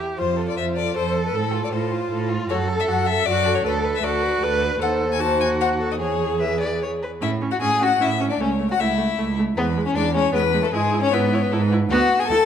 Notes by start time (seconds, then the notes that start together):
Already playing: G4
0.17 F2 F4 C5
0.37 A4
0.48 D5
0.56 F2 C5 E5
0.76 A4 D5
0.95 F2 A4 C5
1.14 A4
1.26 B4
1.35 A2 A4
1.53 F4
1.64 D5
1.72 A2 F4 A4 C5
1.92 F4
2.10 A2 A4
2.29 F4
2.49 F#2 F#4 A4 C#5
2.69 A4
2.80 E5
2.88 F#2 F#4 F#5
3.06 A4 E5
3.26 F#2 F#4 D5
3.46 A4
3.55 C#5
3.64 D2 A4 B4
3.85 B4
3.95 E5
4.03 D2 F#4 A4 D5
4.23 B4
4.41 D2 A4 B4
4.63 B4
4.81 D#2 A4 C5 F#5
5.12 G#5
5.20 F#4 C5 A5
5.40 G#5
5.60 C5 F#5
5.79 A4
5.92 D#5
5.99 E2 G#4 C#5
6.41 B4 E5
6.60 D5
6.83 C#5
7.03 B4
7.21 A2 C#4 E4 E5
7.41 C#4
7.51 F#4 F#5
7.61 A2 C#4 G#4 G#5
7.81 C#4 F#4 F#5
8.00 A2 C#4 E4 E5
8.20 C#4
8.30 D4 D5
8.39 C#2 A3 C#4 C#5
8.59 A3
8.71 F#4 F#5
8.79 C#2 A3 E4 E5
8.98 A3
9.18 C#2 A3
9.39 A3
9.57 E2 G#3 B3 B4
9.77 G#3
9.86 C#4 C#5
9.95 E2 G#3 D4 D5
10.14 G#3 C#4 C#5
10.32 E2 G#3 B3 B4
10.53 G#3
10.62 A3 A4
10.73 G#2 G#3 E4 G#4
10.93 E4
11.02 C#4 C#5
11.12 G#2 B3 E4 B4
11.33 E4 C#5
11.42 B4
11.51 G#2 E4 A4
11.62 B4
11.72 E4
11.89 D2 B3 F#4 F#5
12.19 G#4 G#5
12.27 D2 E4 A4 A5